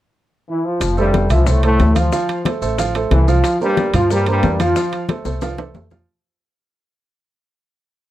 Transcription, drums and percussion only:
0.81 high bongo, high conga, high timbale, maracas
0.97 high bongo, high conga, maracas
1.14 high bongo, high conga, high timbale, maracas
1.30 high bongo, high conga, low conga, high timbale, maracas
1.47 high bongo, high conga, low conga, maracas
1.63 high bongo, high conga, high timbale, maracas
1.80 high bongo, low bongo, high conga, high timbale, low timbale, maracas
1.96 high conga, high timbale, maracas
2.12 high bongo, maracas
2.29 high bongo, high conga, high timbale, maracas
2.45 high bongo, high conga, high timbale, maracas
2.62 high bongo, high conga, maracas
2.78 high bongo, high conga, high timbale, maracas
2.95 high bongo, high conga, high timbale, maracas
3.11 high bongo, low bongo, high conga, high timbale, low timbale, maracas
3.28 high conga, maracas
3.44 high bongo, high conga, high timbale, maracas
3.60 high bongo, high conga, maracas
3.77 high bongo, high conga, high timbale, maracas
3.94 high bongo, high conga, low conga, high timbale, maracas
4.10 high bongo, high conga, maracas
4.26 high bongo, high conga, high timbale, maracas
4.43 high bongo, low bongo, high conga, high timbale, low timbale, maracas
4.60 high conga, high timbale, maracas
4.76 high bongo, high conga, maracas
4.93 high bongo, high conga, high timbale, maracas
5.09 high bongo, high conga, high timbale, maracas
5.25 high bongo, high conga, maracas
5.41 low bongo, high conga, high timbale, maracas
5.58 low bongo, high conga, high timbale, maracas
5.74 low bongo, high conga, low timbale, maracas
5.91 low bongo, low conga, low timbale, maracas

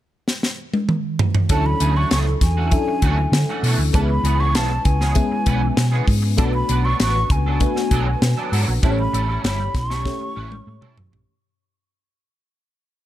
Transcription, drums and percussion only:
0.28 snare
0.43 snare
0.74 high tom
0.89 mid tom
1.19 floor tom
1.35 floor tom
1.49 kick, closed hi-hat
1.80 closed hi-hat
2.11 snare, closed hi-hat
2.41 kick, snare, closed hi-hat
2.71 kick, closed hi-hat
3.02 kick, closed hi-hat
3.33 snare, closed hi-hat
3.64 open hi-hat
3.94 kick, closed hi-hat
4.25 closed hi-hat
4.55 snare, closed hi-hat
4.85 kick, closed hi-hat
5.01 snare
5.15 kick, closed hi-hat
5.46 kick, closed hi-hat
5.77 snare, closed hi-hat
6.08 kick, open hi-hat
6.38 kick, closed hi-hat
6.69 closed hi-hat
7.00 snare, closed hi-hat
7.30 kick, closed hi-hat
7.60 kick, closed hi-hat
7.76 snare
7.91 kick, closed hi-hat
8.22 snare, closed hi-hat
8.53 open hi-hat
8.83 kick, closed hi-hat
9.14 closed hi-hat
9.44 snare, closed hi-hat
9.75 kick, snare, closed hi-hat
9.90 snare
10.05 kick, snare
10.52 high tom
10.82 mid tom
10.97 floor tom
11.13 floor tom

